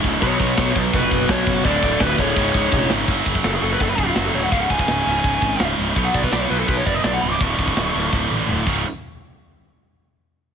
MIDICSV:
0, 0, Header, 1, 7, 480
1, 0, Start_track
1, 0, Tempo, 359497
1, 295, Time_signature, 4, 2, 24, 8
1, 14080, End_track
2, 0, Start_track
2, 0, Title_t, "Lead electric guitar"
2, 0, Program_c, 0, 29
2, 293, Note_on_c, 0, 73, 109
2, 960, Note_off_c, 0, 73, 0
2, 1277, Note_on_c, 0, 71, 93
2, 1743, Note_on_c, 0, 73, 114
2, 1754, Note_off_c, 0, 71, 0
2, 2197, Note_off_c, 0, 73, 0
2, 2202, Note_on_c, 0, 74, 124
2, 2648, Note_off_c, 0, 74, 0
2, 2706, Note_on_c, 0, 71, 90
2, 2938, Note_on_c, 0, 73, 100
2, 2940, Note_off_c, 0, 71, 0
2, 3832, Note_off_c, 0, 73, 0
2, 4600, Note_on_c, 0, 69, 80
2, 4714, Note_off_c, 0, 69, 0
2, 4720, Note_on_c, 0, 68, 70
2, 4834, Note_off_c, 0, 68, 0
2, 4849, Note_on_c, 0, 69, 82
2, 4959, Note_off_c, 0, 69, 0
2, 4988, Note_on_c, 0, 71, 82
2, 5094, Note_off_c, 0, 71, 0
2, 5094, Note_on_c, 0, 69, 64
2, 5195, Note_off_c, 0, 69, 0
2, 5195, Note_on_c, 0, 71, 103
2, 5327, Note_off_c, 0, 71, 0
2, 5327, Note_on_c, 0, 68, 85
2, 5424, Note_off_c, 0, 68, 0
2, 5424, Note_on_c, 0, 65, 67
2, 5537, Note_off_c, 0, 65, 0
2, 5542, Note_on_c, 0, 66, 68
2, 5665, Note_off_c, 0, 66, 0
2, 5689, Note_on_c, 0, 69, 71
2, 5799, Note_off_c, 0, 69, 0
2, 5803, Note_on_c, 0, 73, 88
2, 5915, Note_off_c, 0, 73, 0
2, 5915, Note_on_c, 0, 78, 100
2, 6024, Note_off_c, 0, 78, 0
2, 6029, Note_on_c, 0, 77, 77
2, 6148, Note_off_c, 0, 77, 0
2, 6154, Note_on_c, 0, 78, 78
2, 6271, Note_off_c, 0, 78, 0
2, 6272, Note_on_c, 0, 80, 102
2, 6390, Note_off_c, 0, 80, 0
2, 6411, Note_on_c, 0, 80, 88
2, 7551, Note_off_c, 0, 80, 0
2, 8073, Note_on_c, 0, 78, 70
2, 8192, Note_off_c, 0, 78, 0
2, 8204, Note_on_c, 0, 74, 116
2, 8318, Note_off_c, 0, 74, 0
2, 8334, Note_on_c, 0, 71, 67
2, 8433, Note_off_c, 0, 71, 0
2, 8433, Note_on_c, 0, 74, 92
2, 8550, Note_off_c, 0, 74, 0
2, 8550, Note_on_c, 0, 73, 80
2, 8671, Note_off_c, 0, 73, 0
2, 8674, Note_on_c, 0, 71, 80
2, 8793, Note_off_c, 0, 71, 0
2, 8801, Note_on_c, 0, 69, 81
2, 8908, Note_off_c, 0, 69, 0
2, 8908, Note_on_c, 0, 71, 78
2, 9030, Note_off_c, 0, 71, 0
2, 9043, Note_on_c, 0, 73, 89
2, 9159, Note_off_c, 0, 73, 0
2, 9166, Note_on_c, 0, 74, 90
2, 9274, Note_off_c, 0, 74, 0
2, 9274, Note_on_c, 0, 75, 91
2, 9392, Note_off_c, 0, 75, 0
2, 9398, Note_on_c, 0, 74, 80
2, 9516, Note_off_c, 0, 74, 0
2, 9522, Note_on_c, 0, 78, 87
2, 9630, Note_on_c, 0, 83, 98
2, 9639, Note_off_c, 0, 78, 0
2, 9762, Note_off_c, 0, 83, 0
2, 9762, Note_on_c, 0, 86, 97
2, 9879, Note_off_c, 0, 86, 0
2, 9904, Note_on_c, 0, 85, 93
2, 10803, Note_off_c, 0, 85, 0
2, 14080, End_track
3, 0, Start_track
3, 0, Title_t, "Lead electric guitar"
3, 0, Program_c, 1, 29
3, 312, Note_on_c, 1, 66, 89
3, 970, Note_off_c, 1, 66, 0
3, 1255, Note_on_c, 1, 66, 83
3, 1696, Note_off_c, 1, 66, 0
3, 1738, Note_on_c, 1, 66, 88
3, 2177, Note_off_c, 1, 66, 0
3, 2221, Note_on_c, 1, 69, 98
3, 2658, Note_off_c, 1, 69, 0
3, 2702, Note_on_c, 1, 66, 96
3, 2915, Note_off_c, 1, 66, 0
3, 2943, Note_on_c, 1, 68, 77
3, 3835, Note_off_c, 1, 68, 0
3, 14080, End_track
4, 0, Start_track
4, 0, Title_t, "Distorted electric guitar"
4, 0, Program_c, 2, 30
4, 0, Note_on_c, 2, 37, 86
4, 0, Note_on_c, 2, 44, 96
4, 0, Note_on_c, 2, 49, 114
4, 273, Note_off_c, 2, 37, 0
4, 278, Note_on_c, 2, 47, 95
4, 289, Note_off_c, 2, 44, 0
4, 299, Note_off_c, 2, 49, 0
4, 300, Note_on_c, 2, 54, 91
4, 318, Note_on_c, 2, 59, 92
4, 2182, Note_off_c, 2, 47, 0
4, 2193, Note_off_c, 2, 54, 0
4, 2202, Note_off_c, 2, 59, 0
4, 2202, Note_on_c, 2, 38, 78
4, 2223, Note_on_c, 2, 45, 93
4, 2240, Note_on_c, 2, 50, 98
4, 3141, Note_off_c, 2, 38, 0
4, 3146, Note_on_c, 2, 37, 84
4, 3155, Note_off_c, 2, 45, 0
4, 3162, Note_on_c, 2, 44, 96
4, 3163, Note_off_c, 2, 50, 0
4, 3185, Note_on_c, 2, 49, 112
4, 4090, Note_off_c, 2, 37, 0
4, 4095, Note_on_c, 2, 42, 86
4, 4101, Note_off_c, 2, 49, 0
4, 4103, Note_off_c, 2, 44, 0
4, 4117, Note_on_c, 2, 49, 86
4, 4139, Note_on_c, 2, 54, 90
4, 4810, Note_off_c, 2, 42, 0
4, 4813, Note_off_c, 2, 54, 0
4, 4821, Note_off_c, 2, 49, 0
4, 4829, Note_on_c, 2, 54, 86
4, 4851, Note_on_c, 2, 49, 75
4, 4866, Note_on_c, 2, 42, 73
4, 6017, Note_off_c, 2, 54, 0
4, 6024, Note_off_c, 2, 42, 0
4, 6028, Note_off_c, 2, 49, 0
4, 6029, Note_on_c, 2, 37, 67
4, 6052, Note_on_c, 2, 44, 81
4, 6070, Note_on_c, 2, 49, 86
4, 6738, Note_off_c, 2, 37, 0
4, 6741, Note_off_c, 2, 49, 0
4, 6749, Note_off_c, 2, 44, 0
4, 6757, Note_on_c, 2, 49, 92
4, 6780, Note_on_c, 2, 44, 81
4, 6800, Note_on_c, 2, 37, 66
4, 7944, Note_off_c, 2, 49, 0
4, 7955, Note_off_c, 2, 37, 0
4, 7955, Note_off_c, 2, 44, 0
4, 7961, Note_on_c, 2, 47, 78
4, 7973, Note_on_c, 2, 54, 81
4, 7995, Note_on_c, 2, 59, 82
4, 8661, Note_off_c, 2, 59, 0
4, 8666, Note_off_c, 2, 47, 0
4, 8677, Note_on_c, 2, 59, 90
4, 8691, Note_off_c, 2, 54, 0
4, 8697, Note_on_c, 2, 54, 72
4, 8716, Note_on_c, 2, 47, 69
4, 9867, Note_off_c, 2, 59, 0
4, 9876, Note_off_c, 2, 47, 0
4, 9877, Note_off_c, 2, 54, 0
4, 9882, Note_on_c, 2, 38, 74
4, 9903, Note_on_c, 2, 45, 80
4, 9922, Note_on_c, 2, 50, 88
4, 10585, Note_off_c, 2, 50, 0
4, 10590, Note_off_c, 2, 38, 0
4, 10601, Note_off_c, 2, 45, 0
4, 10601, Note_on_c, 2, 50, 88
4, 10622, Note_on_c, 2, 45, 78
4, 10642, Note_on_c, 2, 38, 63
4, 11567, Note_off_c, 2, 50, 0
4, 11575, Note_off_c, 2, 38, 0
4, 11577, Note_off_c, 2, 45, 0
4, 11580, Note_on_c, 2, 37, 94
4, 11592, Note_on_c, 2, 44, 87
4, 11597, Note_on_c, 2, 49, 89
4, 11768, Note_off_c, 2, 37, 0
4, 11773, Note_off_c, 2, 44, 0
4, 11776, Note_off_c, 2, 49, 0
4, 14080, End_track
5, 0, Start_track
5, 0, Title_t, "Overdriven electric guitar"
5, 0, Program_c, 3, 29
5, 0, Note_on_c, 3, 37, 81
5, 0, Note_on_c, 3, 44, 85
5, 0, Note_on_c, 3, 49, 80
5, 278, Note_off_c, 3, 37, 0
5, 283, Note_on_c, 3, 47, 87
5, 287, Note_off_c, 3, 44, 0
5, 296, Note_off_c, 3, 49, 0
5, 305, Note_on_c, 3, 54, 93
5, 321, Note_on_c, 3, 59, 99
5, 991, Note_off_c, 3, 47, 0
5, 991, Note_off_c, 3, 59, 0
5, 1002, Note_off_c, 3, 54, 0
5, 1007, Note_on_c, 3, 59, 86
5, 1020, Note_on_c, 3, 54, 91
5, 1036, Note_on_c, 3, 47, 71
5, 1695, Note_off_c, 3, 47, 0
5, 1711, Note_off_c, 3, 59, 0
5, 1711, Note_on_c, 3, 47, 81
5, 1717, Note_off_c, 3, 54, 0
5, 1732, Note_on_c, 3, 54, 88
5, 1744, Note_on_c, 3, 59, 101
5, 2182, Note_off_c, 3, 47, 0
5, 2190, Note_on_c, 3, 38, 82
5, 2193, Note_off_c, 3, 54, 0
5, 2199, Note_off_c, 3, 59, 0
5, 2212, Note_on_c, 3, 45, 96
5, 2226, Note_on_c, 3, 50, 98
5, 2896, Note_off_c, 3, 50, 0
5, 2900, Note_off_c, 3, 38, 0
5, 2911, Note_off_c, 3, 45, 0
5, 2912, Note_on_c, 3, 50, 110
5, 2928, Note_on_c, 3, 45, 93
5, 2946, Note_on_c, 3, 38, 83
5, 3141, Note_off_c, 3, 50, 0
5, 3145, Note_off_c, 3, 38, 0
5, 3149, Note_off_c, 3, 45, 0
5, 3150, Note_on_c, 3, 37, 99
5, 3171, Note_on_c, 3, 44, 110
5, 3187, Note_on_c, 3, 49, 110
5, 3847, Note_off_c, 3, 49, 0
5, 3858, Note_off_c, 3, 37, 0
5, 3863, Note_on_c, 3, 49, 74
5, 3868, Note_off_c, 3, 44, 0
5, 3885, Note_on_c, 3, 44, 82
5, 3898, Note_on_c, 3, 37, 67
5, 4095, Note_off_c, 3, 49, 0
5, 4106, Note_off_c, 3, 44, 0
5, 4113, Note_off_c, 3, 37, 0
5, 14080, End_track
6, 0, Start_track
6, 0, Title_t, "Picked electric bass"
6, 0, Program_c, 4, 34
6, 52, Note_on_c, 4, 25, 97
6, 224, Note_off_c, 4, 25, 0
6, 296, Note_on_c, 4, 35, 112
6, 466, Note_off_c, 4, 35, 0
6, 528, Note_on_c, 4, 35, 95
6, 700, Note_off_c, 4, 35, 0
6, 775, Note_on_c, 4, 35, 102
6, 944, Note_off_c, 4, 35, 0
6, 1010, Note_on_c, 4, 35, 92
6, 1181, Note_off_c, 4, 35, 0
6, 1246, Note_on_c, 4, 29, 106
6, 1418, Note_off_c, 4, 29, 0
6, 1486, Note_on_c, 4, 30, 84
6, 1657, Note_off_c, 4, 30, 0
6, 1722, Note_on_c, 4, 35, 111
6, 1894, Note_off_c, 4, 35, 0
6, 1958, Note_on_c, 4, 30, 88
6, 2131, Note_off_c, 4, 30, 0
6, 2197, Note_on_c, 4, 26, 96
6, 2370, Note_off_c, 4, 26, 0
6, 2439, Note_on_c, 4, 26, 99
6, 2611, Note_off_c, 4, 26, 0
6, 2677, Note_on_c, 4, 26, 102
6, 2849, Note_off_c, 4, 26, 0
6, 2920, Note_on_c, 4, 26, 90
6, 3091, Note_off_c, 4, 26, 0
6, 3157, Note_on_c, 4, 25, 107
6, 3329, Note_off_c, 4, 25, 0
6, 3393, Note_on_c, 4, 25, 77
6, 3566, Note_off_c, 4, 25, 0
6, 3635, Note_on_c, 4, 29, 100
6, 3807, Note_off_c, 4, 29, 0
6, 3877, Note_on_c, 4, 32, 89
6, 4048, Note_off_c, 4, 32, 0
6, 4107, Note_on_c, 4, 30, 99
6, 4275, Note_off_c, 4, 30, 0
6, 4355, Note_on_c, 4, 30, 87
6, 4520, Note_off_c, 4, 30, 0
6, 4603, Note_on_c, 4, 30, 93
6, 4765, Note_off_c, 4, 30, 0
6, 4836, Note_on_c, 4, 30, 77
6, 5001, Note_off_c, 4, 30, 0
6, 5080, Note_on_c, 4, 30, 108
6, 5243, Note_off_c, 4, 30, 0
6, 5317, Note_on_c, 4, 25, 79
6, 5481, Note_off_c, 4, 25, 0
6, 5562, Note_on_c, 4, 30, 94
6, 5725, Note_off_c, 4, 30, 0
6, 5791, Note_on_c, 4, 26, 87
6, 5957, Note_off_c, 4, 26, 0
6, 6030, Note_on_c, 4, 25, 84
6, 6197, Note_off_c, 4, 25, 0
6, 6279, Note_on_c, 4, 25, 85
6, 6443, Note_off_c, 4, 25, 0
6, 6517, Note_on_c, 4, 25, 91
6, 6682, Note_off_c, 4, 25, 0
6, 6764, Note_on_c, 4, 25, 88
6, 6927, Note_off_c, 4, 25, 0
6, 6996, Note_on_c, 4, 25, 102
6, 7161, Note_off_c, 4, 25, 0
6, 7235, Note_on_c, 4, 32, 86
6, 7401, Note_off_c, 4, 32, 0
6, 7482, Note_on_c, 4, 25, 103
6, 7645, Note_off_c, 4, 25, 0
6, 7728, Note_on_c, 4, 25, 91
6, 7890, Note_off_c, 4, 25, 0
6, 7957, Note_on_c, 4, 35, 85
6, 8122, Note_off_c, 4, 35, 0
6, 8203, Note_on_c, 4, 35, 95
6, 8367, Note_off_c, 4, 35, 0
6, 8441, Note_on_c, 4, 35, 97
6, 8606, Note_off_c, 4, 35, 0
6, 8685, Note_on_c, 4, 35, 84
6, 8849, Note_off_c, 4, 35, 0
6, 8918, Note_on_c, 4, 35, 92
6, 9085, Note_off_c, 4, 35, 0
6, 9161, Note_on_c, 4, 30, 83
6, 9326, Note_off_c, 4, 30, 0
6, 9413, Note_on_c, 4, 35, 99
6, 9575, Note_off_c, 4, 35, 0
6, 9654, Note_on_c, 4, 25, 88
6, 9815, Note_off_c, 4, 25, 0
6, 9886, Note_on_c, 4, 26, 96
6, 10050, Note_off_c, 4, 26, 0
6, 10128, Note_on_c, 4, 26, 86
6, 10292, Note_off_c, 4, 26, 0
6, 10372, Note_on_c, 4, 26, 95
6, 10535, Note_off_c, 4, 26, 0
6, 10615, Note_on_c, 4, 26, 78
6, 10778, Note_off_c, 4, 26, 0
6, 10850, Note_on_c, 4, 26, 92
6, 11014, Note_off_c, 4, 26, 0
6, 11088, Note_on_c, 4, 33, 80
6, 11253, Note_off_c, 4, 33, 0
6, 11330, Note_on_c, 4, 26, 86
6, 11495, Note_off_c, 4, 26, 0
6, 11577, Note_on_c, 4, 25, 81
6, 11798, Note_off_c, 4, 25, 0
6, 14080, End_track
7, 0, Start_track
7, 0, Title_t, "Drums"
7, 54, Note_on_c, 9, 36, 102
7, 188, Note_off_c, 9, 36, 0
7, 293, Note_on_c, 9, 36, 119
7, 293, Note_on_c, 9, 52, 73
7, 426, Note_off_c, 9, 36, 0
7, 427, Note_off_c, 9, 52, 0
7, 531, Note_on_c, 9, 36, 97
7, 664, Note_off_c, 9, 36, 0
7, 769, Note_on_c, 9, 38, 126
7, 769, Note_on_c, 9, 52, 74
7, 772, Note_on_c, 9, 36, 127
7, 903, Note_off_c, 9, 38, 0
7, 903, Note_off_c, 9, 52, 0
7, 905, Note_off_c, 9, 36, 0
7, 1010, Note_on_c, 9, 36, 92
7, 1144, Note_off_c, 9, 36, 0
7, 1246, Note_on_c, 9, 52, 76
7, 1249, Note_on_c, 9, 36, 124
7, 1380, Note_off_c, 9, 52, 0
7, 1382, Note_off_c, 9, 36, 0
7, 1486, Note_on_c, 9, 36, 88
7, 1619, Note_off_c, 9, 36, 0
7, 1723, Note_on_c, 9, 38, 116
7, 1723, Note_on_c, 9, 52, 68
7, 1725, Note_on_c, 9, 36, 115
7, 1857, Note_off_c, 9, 38, 0
7, 1857, Note_off_c, 9, 52, 0
7, 1859, Note_off_c, 9, 36, 0
7, 1962, Note_on_c, 9, 36, 90
7, 2095, Note_off_c, 9, 36, 0
7, 2194, Note_on_c, 9, 52, 74
7, 2200, Note_on_c, 9, 36, 112
7, 2328, Note_off_c, 9, 52, 0
7, 2334, Note_off_c, 9, 36, 0
7, 2439, Note_on_c, 9, 36, 97
7, 2573, Note_off_c, 9, 36, 0
7, 2674, Note_on_c, 9, 38, 127
7, 2674, Note_on_c, 9, 52, 68
7, 2678, Note_on_c, 9, 36, 127
7, 2807, Note_off_c, 9, 38, 0
7, 2807, Note_off_c, 9, 52, 0
7, 2812, Note_off_c, 9, 36, 0
7, 2917, Note_on_c, 9, 36, 93
7, 3051, Note_off_c, 9, 36, 0
7, 3154, Note_on_c, 9, 52, 58
7, 3157, Note_on_c, 9, 36, 127
7, 3288, Note_off_c, 9, 52, 0
7, 3291, Note_off_c, 9, 36, 0
7, 3396, Note_on_c, 9, 36, 90
7, 3530, Note_off_c, 9, 36, 0
7, 3631, Note_on_c, 9, 48, 77
7, 3635, Note_on_c, 9, 36, 127
7, 3765, Note_off_c, 9, 48, 0
7, 3769, Note_off_c, 9, 36, 0
7, 3870, Note_on_c, 9, 38, 99
7, 4004, Note_off_c, 9, 38, 0
7, 4107, Note_on_c, 9, 49, 114
7, 4114, Note_on_c, 9, 36, 109
7, 4240, Note_off_c, 9, 49, 0
7, 4247, Note_off_c, 9, 36, 0
7, 4349, Note_on_c, 9, 46, 60
7, 4354, Note_on_c, 9, 36, 81
7, 4476, Note_off_c, 9, 36, 0
7, 4476, Note_on_c, 9, 36, 84
7, 4482, Note_off_c, 9, 46, 0
7, 4596, Note_on_c, 9, 38, 114
7, 4596, Note_on_c, 9, 46, 84
7, 4609, Note_off_c, 9, 36, 0
7, 4730, Note_off_c, 9, 38, 0
7, 4730, Note_off_c, 9, 46, 0
7, 4838, Note_on_c, 9, 46, 53
7, 4971, Note_off_c, 9, 46, 0
7, 5077, Note_on_c, 9, 36, 106
7, 5079, Note_on_c, 9, 46, 75
7, 5211, Note_off_c, 9, 36, 0
7, 5212, Note_off_c, 9, 46, 0
7, 5315, Note_on_c, 9, 46, 50
7, 5316, Note_on_c, 9, 36, 77
7, 5448, Note_off_c, 9, 46, 0
7, 5450, Note_off_c, 9, 36, 0
7, 5552, Note_on_c, 9, 38, 112
7, 5552, Note_on_c, 9, 46, 78
7, 5686, Note_off_c, 9, 38, 0
7, 5686, Note_off_c, 9, 46, 0
7, 5798, Note_on_c, 9, 46, 63
7, 5931, Note_off_c, 9, 46, 0
7, 6032, Note_on_c, 9, 46, 69
7, 6035, Note_on_c, 9, 36, 111
7, 6165, Note_off_c, 9, 46, 0
7, 6168, Note_off_c, 9, 36, 0
7, 6277, Note_on_c, 9, 36, 83
7, 6277, Note_on_c, 9, 46, 53
7, 6398, Note_off_c, 9, 36, 0
7, 6398, Note_on_c, 9, 36, 82
7, 6411, Note_off_c, 9, 46, 0
7, 6518, Note_on_c, 9, 38, 122
7, 6518, Note_on_c, 9, 46, 77
7, 6531, Note_off_c, 9, 36, 0
7, 6651, Note_off_c, 9, 38, 0
7, 6651, Note_off_c, 9, 46, 0
7, 6757, Note_on_c, 9, 46, 50
7, 6891, Note_off_c, 9, 46, 0
7, 6991, Note_on_c, 9, 46, 71
7, 6997, Note_on_c, 9, 36, 111
7, 7125, Note_off_c, 9, 46, 0
7, 7131, Note_off_c, 9, 36, 0
7, 7236, Note_on_c, 9, 46, 54
7, 7238, Note_on_c, 9, 36, 93
7, 7370, Note_off_c, 9, 46, 0
7, 7372, Note_off_c, 9, 36, 0
7, 7477, Note_on_c, 9, 38, 112
7, 7477, Note_on_c, 9, 46, 71
7, 7611, Note_off_c, 9, 38, 0
7, 7611, Note_off_c, 9, 46, 0
7, 7721, Note_on_c, 9, 46, 55
7, 7854, Note_off_c, 9, 46, 0
7, 7960, Note_on_c, 9, 46, 72
7, 7961, Note_on_c, 9, 36, 113
7, 8093, Note_off_c, 9, 46, 0
7, 8095, Note_off_c, 9, 36, 0
7, 8201, Note_on_c, 9, 46, 59
7, 8203, Note_on_c, 9, 36, 79
7, 8325, Note_off_c, 9, 36, 0
7, 8325, Note_on_c, 9, 36, 75
7, 8335, Note_off_c, 9, 46, 0
7, 8446, Note_on_c, 9, 38, 113
7, 8446, Note_on_c, 9, 46, 84
7, 8458, Note_off_c, 9, 36, 0
7, 8580, Note_off_c, 9, 38, 0
7, 8580, Note_off_c, 9, 46, 0
7, 8690, Note_on_c, 9, 46, 56
7, 8823, Note_off_c, 9, 46, 0
7, 8920, Note_on_c, 9, 46, 78
7, 8925, Note_on_c, 9, 36, 98
7, 9054, Note_off_c, 9, 46, 0
7, 9059, Note_off_c, 9, 36, 0
7, 9166, Note_on_c, 9, 36, 79
7, 9167, Note_on_c, 9, 46, 58
7, 9299, Note_off_c, 9, 36, 0
7, 9300, Note_off_c, 9, 46, 0
7, 9401, Note_on_c, 9, 38, 117
7, 9401, Note_on_c, 9, 46, 75
7, 9535, Note_off_c, 9, 38, 0
7, 9535, Note_off_c, 9, 46, 0
7, 9652, Note_on_c, 9, 46, 58
7, 9785, Note_off_c, 9, 46, 0
7, 9889, Note_on_c, 9, 36, 108
7, 9890, Note_on_c, 9, 46, 77
7, 10022, Note_off_c, 9, 36, 0
7, 10024, Note_off_c, 9, 46, 0
7, 10128, Note_on_c, 9, 46, 51
7, 10129, Note_on_c, 9, 36, 91
7, 10248, Note_off_c, 9, 36, 0
7, 10248, Note_on_c, 9, 36, 84
7, 10261, Note_off_c, 9, 46, 0
7, 10373, Note_on_c, 9, 38, 117
7, 10373, Note_on_c, 9, 46, 77
7, 10382, Note_off_c, 9, 36, 0
7, 10506, Note_off_c, 9, 38, 0
7, 10506, Note_off_c, 9, 46, 0
7, 10618, Note_on_c, 9, 46, 45
7, 10751, Note_off_c, 9, 46, 0
7, 10852, Note_on_c, 9, 36, 103
7, 10857, Note_on_c, 9, 38, 56
7, 10986, Note_off_c, 9, 36, 0
7, 10990, Note_off_c, 9, 38, 0
7, 11098, Note_on_c, 9, 48, 54
7, 11232, Note_off_c, 9, 48, 0
7, 11333, Note_on_c, 9, 45, 82
7, 11467, Note_off_c, 9, 45, 0
7, 11573, Note_on_c, 9, 36, 105
7, 11577, Note_on_c, 9, 49, 91
7, 11706, Note_off_c, 9, 36, 0
7, 11710, Note_off_c, 9, 49, 0
7, 14080, End_track
0, 0, End_of_file